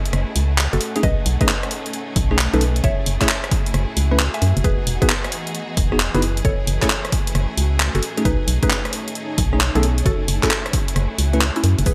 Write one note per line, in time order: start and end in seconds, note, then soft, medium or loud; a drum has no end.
0.00 4.60 A3 medium
0.00 4.64 A3 medium
0.00 4.60 C#4 medium
0.00 0.79 E4 medium
0.00 0.77 G#4 medium
0.00 1.65 F#5 medium
0.05 closed hi-hat medium
0.13 0.25 F#1 loud
0.13 cross-stick medium
0.13 closed hi-hat medium
0.36 0.68 C#2 medium
0.36 open hi-hat loud
0.58 clap loud
0.73 0.79 F#1 medium
0.73 0.94 F#4 medium
0.73 0.94 A4 medium
0.73 closed hi-hat medium
0.80 3.58 C#4 medium
0.80 2.82 D#4 medium
0.80 11.82 G#4 medium
0.80 open hi-hat loud
0.96 1.05 A3 medium
0.96 1.05 C#4 medium
0.96 1.05 D#4 medium
0.96 1.05 G#4 loud
0.96 closed hi-hat medium
1.03 1.15 B1 loud
1.03 1.25 B4 medium
1.03 1.25 D#5 loud
1.03 kick loud
1.03 closed hi-hat medium
1.26 1.38 B1 medium
1.26 open hi-hat loud
1.41 1.50 A3 medium
1.41 1.50 C#4 medium
1.41 1.50 D#4 medium
1.41 1.50 G#4 medium
1.41 1.62 B4 medium
1.41 1.62 D#5 medium
1.41 kick loud
1.41 closed hi-hat medium
1.48 clap loud
1.63 cross-stick medium
1.63 closed hi-hat soft
1.71 2.84 D#5 medium
1.71 open hi-hat loud
1.86 closed hi-hat medium
1.93 closed hi-hat medium
2.16 2.48 B1 medium
2.16 kick loud
2.16 open hi-hat loud
2.31 2.36 A3 medium
2.31 2.36 C#4 medium
2.31 2.36 D#4 medium
2.31 2.36 G#4 medium
2.31 cross-stick soft
2.39 clap loud
2.54 2.81 B1 loud
2.54 2.63 A3 medium
2.54 2.63 C#4 medium
2.54 2.63 D#4 medium
2.54 2.75 D#4 medium
2.54 2.63 A4 loud
2.54 2.75 B4 medium
2.54 closed hi-hat soft
2.61 open hi-hat loud
2.76 closed hi-hat medium
2.84 2.95 F#1 loud
2.84 4.62 E4 medium
2.84 5.29 F#4 medium
2.84 3.06 C#5 medium
2.84 3.06 E5 loud
2.84 kick loud
2.84 closed hi-hat medium
3.06 3.18 F#1 medium
3.06 open hi-hat loud
3.21 3.27 A3 medium
3.21 3.27 C#4 medium
3.21 3.27 E4 medium
3.21 3.27 G#4 loud
3.21 3.43 C#5 medium
3.21 3.43 E5 loud
3.21 kick medium
3.21 clap medium
3.21 closed hi-hat medium
3.29 clap loud
3.44 cross-stick medium
3.44 closed hi-hat soft
3.51 kick loud
3.51 open hi-hat loud
3.66 4.64 E5 medium
3.66 closed hi-hat medium
3.74 3.86 F#1 loud
3.74 cross-stick medium
3.74 closed hi-hat medium
3.97 4.29 C#2 medium
3.97 open hi-hat loud
4.11 4.21 A3 medium
4.11 4.21 C#4 medium
4.11 4.21 E4 medium
4.11 4.21 B4 loud
4.19 clap loud
4.34 4.55 E5 medium
4.34 4.55 G#5 medium
4.34 closed hi-hat soft
4.42 4.53 F#2 medium
4.42 open hi-hat loud
4.57 4.63 F#1 loud
4.57 closed hi-hat medium
4.64 4.76 E1 loud
4.64 6.96 E3 medium
4.64 6.21 B3 medium
4.64 6.21 D#4 medium
4.64 6.21 F#4 medium
4.64 4.86 G#4 medium
4.64 4.86 B4 loud
4.64 kick loud
4.64 closed hi-hat medium
4.82 6.22 D#5 medium
4.87 4.99 E1 medium
4.87 open hi-hat loud
5.02 5.11 B3 medium
5.02 5.11 D#4 medium
5.02 5.11 F#4 medium
5.02 5.23 G#4 medium
5.02 5.11 G#4 loud
5.02 5.23 B4 loud
5.02 kick loud
5.02 closed hi-hat medium
5.09 clap loud
5.24 cross-stick medium
5.24 closed hi-hat soft
5.29 6.96 B4 medium
5.29 open hi-hat loud
5.47 closed hi-hat medium
5.55 closed hi-hat medium
5.77 6.09 E1 medium
5.77 kick loud
5.77 open hi-hat loud
5.92 5.97 B3 medium
5.92 5.97 D#4 medium
5.92 5.97 F#4 medium
5.92 5.97 G#4 medium
5.92 cross-stick soft
6.00 clap loud
6.14 6.42 F#1 loud
6.14 6.21 B3 medium
6.14 6.21 D#4 medium
6.14 6.36 E4 medium
6.14 6.21 F#4 medium
6.14 6.36 G#4 medium
6.14 6.21 B4 loud
6.14 closed hi-hat medium
6.22 8.01 A3 medium
6.22 11.82 C#4 medium
6.22 8.01 E4 medium
6.22 8.87 F#4 medium
6.22 open hi-hat loud
6.37 closed hi-hat medium
6.45 6.56 F#1 loud
6.45 6.67 A4 medium
6.45 6.67 C#5 loud
6.45 kick loud
6.45 closed hi-hat medium
6.53 11.86 A3 medium
6.67 6.79 F#1 medium
6.67 open hi-hat loud
6.82 6.88 A3 medium
6.82 6.87 C#4 medium
6.82 6.88 E4 medium
6.82 6.88 G#4 loud
6.82 7.03 A4 medium
6.82 7.03 C#5 medium
6.82 kick medium
6.82 clap medium
6.82 closed hi-hat medium
6.90 clap loud
7.05 8.03 E5 medium
7.05 cross-stick medium
7.05 closed hi-hat soft
7.12 kick loud
7.12 open hi-hat loud
7.27 closed hi-hat medium
7.35 7.47 F#1 loud
7.35 cross-stick soft
7.35 closed hi-hat medium
7.58 7.90 C#2 medium
7.58 open hi-hat loud
7.80 clap loud
7.95 8.01 F#1 medium
7.95 8.16 F#4 medium
7.95 8.16 A4 medium
7.95 closed hi-hat medium
8.02 11.82 A3 medium
8.02 10.06 D#4 medium
8.02 10.04 D#4 medium
8.02 open hi-hat loud
8.18 8.27 A3 medium
8.18 8.27 C#4 medium
8.18 8.27 D#4 medium
8.18 8.27 G#4 medium
8.18 closed hi-hat medium
8.25 8.37 B1 loud
8.25 8.47 D#4 medium
8.25 8.47 B4 loud
8.25 kick loud
8.25 closed hi-hat medium
8.33 10.79 C#5 loud
8.48 8.59 B1 medium
8.48 open hi-hat loud
8.63 8.72 A3 medium
8.63 8.72 C#4 medium
8.63 8.72 D#4 medium
8.63 8.84 D#4 medium
8.63 8.72 G#4 medium
8.63 8.84 B4 medium
8.63 kick loud
8.63 closed hi-hat medium
8.70 clap loud
8.85 cross-stick medium
8.85 closed hi-hat soft
8.93 open hi-hat loud
9.08 closed hi-hat medium
9.15 closed hi-hat medium
9.38 9.70 B1 medium
9.38 kick loud
9.38 open hi-hat loud
9.53 9.58 A3 medium
9.53 9.58 C#4 medium
9.53 9.58 D#4 medium
9.53 9.58 G#4 medium
9.53 cross-stick soft
9.60 clap loud
9.75 10.03 B1 loud
9.75 9.85 A3 medium
9.75 9.97 B3 medium
9.75 9.85 C#4 medium
9.75 9.85 D#4 medium
9.75 9.97 G#4 medium
9.75 9.85 A4 loud
9.75 closed hi-hat medium
9.83 open hi-hat loud
9.98 closed hi-hat medium
10.06 10.17 F#1 loud
10.06 11.84 E4 medium
10.06 11.94 F#4 medium
10.06 10.28 F#4 medium
10.06 10.28 A4 loud
10.06 kick loud
10.06 closed hi-hat medium
10.28 10.40 F#1 medium
10.28 open hi-hat loud
10.43 10.48 A3 medium
10.43 10.48 C#4 medium
10.43 10.49 E4 medium
10.43 10.64 F#4 medium
10.43 10.48 G#4 loud
10.43 10.64 A4 loud
10.43 kick medium
10.43 clap medium
10.43 closed hi-hat medium
10.51 clap loud
10.66 cross-stick medium
10.66 closed hi-hat soft
10.73 11.86 E5 medium
10.73 kick loud
10.73 open hi-hat loud
10.88 11.94 G#5 medium
10.88 closed hi-hat medium
10.96 11.08 F#1 loud
10.96 cross-stick medium
10.96 closed hi-hat medium
11.18 11.51 C#2 medium
11.18 open hi-hat loud
11.33 11.43 A3 medium
11.33 11.43 C#4 medium
11.33 11.43 E4 medium
11.33 11.43 B4 medium
11.33 closed hi-hat soft
11.41 clap loud
11.56 11.77 C#4 medium
11.56 11.77 E4 loud
11.56 closed hi-hat medium
11.64 11.75 F#2 loud
11.64 open hi-hat loud
11.79 11.85 F#1 loud
11.79 closed hi-hat medium
11.86 11.94 E3 loud
11.86 11.94 B3 medium
11.86 11.94 D#4 medium
11.86 11.94 F#4 medium
11.86 11.94 G#4 medium
11.86 11.94 B4 loud
11.86 kick loud
11.86 closed hi-hat medium
11.86 shaker medium